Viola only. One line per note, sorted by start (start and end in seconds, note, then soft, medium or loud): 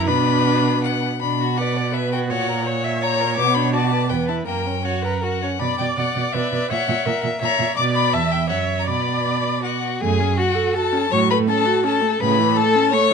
0.07 1.03 D4 medium
1.58 1.92 D5 medium
1.94 2.31 B4 soft
2.30 2.66 C#5 medium
2.66 3.75 C#5 medium
3.73 4.11 D5 medium
4.10 4.47 B4 soft
4.47 4.81 A#4 soft
4.85 5.03 C#5 soft
5.05 5.23 B4 soft
5.24 5.42 A#4 soft
5.42 5.50 C#5 soft
5.60 6.35 D5 soft
6.34 6.72 B4 soft
6.70 7.08 C#5 medium
7.06 7.41 A#4 medium
7.42 7.76 C#5 medium
7.77 8.15 D5 medium
8.13 8.49 E5 medium
8.50 8.89 C#5 medium
8.87 9.82 D5 soft
10.01 10.21 A3 medium
10.20 10.39 C#4 soft
10.38 10.56 F#4 medium
10.55 10.76 A4 medium
10.75 10.94 F#4 medium
10.93 11.10 C#4 soft
11.11 11.31 F#3 medium
11.30 11.49 A3 soft
11.48 11.67 C#4 medium
11.66 11.85 F#4 medium
11.84 12.03 C#4 medium
12.02 12.21 A3 soft
12.21 12.41 C#3 medium
12.39 12.59 E3 medium
12.57 12.77 A3 medium
12.75 12.95 C#4 medium
12.93 13.13 A3 medium